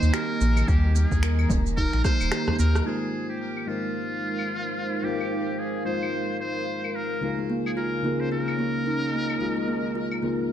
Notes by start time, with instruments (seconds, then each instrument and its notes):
Already playing: analog synth pad C3 D#3 A#3 D#5 G5, kalimba A#3, muted trumpet C5
0.02 analog synth bass D#2, shaker
0.13 kalimba G4, muted trumpet A#4, finger snap, shaker
0.41 analog synth bass A#1, kalimba A#3, shaker
0.47 analog synth pad A#5
0.57 claves, shaker
0.68 analog synth bass D#2, kalimba G3, muted trumpet G4, kick, shaker
0.84 kalimba G3
0.95 kalimba A#3, muted trumpet G#4, shaker
1.12 analog synth bass D#2, kick, shaker
1.23 kalimba A#4, finger snap, shaker
1.39 claves
1.50 analog synth bass D#1, kalimba A#3, kick, frame drum, shaker
1.66 shaker
1.77 kalimba D#4, muted trumpet A#4, kick, shaker
1.93 analog synth bass A#1, finger snap
2.04 kalimba A#3, muted trumpet C5, kick, cross-stick, shaker
2.21 analog synth bass D#1, claves, shaker
2.32 kalimba G4, finger snap, cross-stick, shaker
2.48 cross-stick, frame drum
2.59 analog synth bass D#2, kalimba A#3, muted trumpet A#4, shaker
2.75 cross-stick, shaker
2.84 synth keys G#3 D#4 F4 A#4, analog synth pad G#3, muted trumpet G#4
2.88 synth keys C5
3.11 analog synth pad A#4
3.19 analog synth pad D#4
3.29 muted trumpet G4, analog synth pad F5
3.57 claves
3.66 synth keys G#3 D#4 F4 A#4, muted trumpet F4
3.70 synth keys C5
3.90 analog synth pad C5
4.39 claves
5.03 synth keys G#3 D#4 F4 A#4 C5, muted trumpet G4
5.20 claves
5.59 muted trumpet G#4
5.84 synth keys G#3 D#4 F4 A#4 C5, muted trumpet C5
6.03 claves
6.41 muted trumpet C5
6.84 claves
6.95 muted trumpet A#4
7.21 synth keys C#3 D#4 F4 G#4, analog synth pad C#3, kalimba G#3
7.25 synth keys A#4
7.39 kalimba G#3
7.50 kalimba A#3
7.66 muted trumpet G#4, claves
7.77 kalimba F4, muted trumpet A#4
7.81 analog synth pad C#4
8.02 synth keys C#3 D#4 F4 G#4, kalimba A#3
8.07 synth keys A#4
8.20 muted trumpet C5
8.32 kalimba C#4, muted trumpet A#4
8.48 claves
8.59 kalimba A#3
8.76 analog synth pad D#5
8.86 kalimba D#4
9.14 kalimba A#3
9.30 claves
9.39 synth keys C#3 D#4 F4 G#4, kalimba G#3
9.43 synth keys A#4
9.57 kalimba G#3
9.68 kalimba A#3
9.95 kalimba F4
10.12 claves
10.22 synth keys C#3 D#4 F4 G#4 A#4, kalimba A#3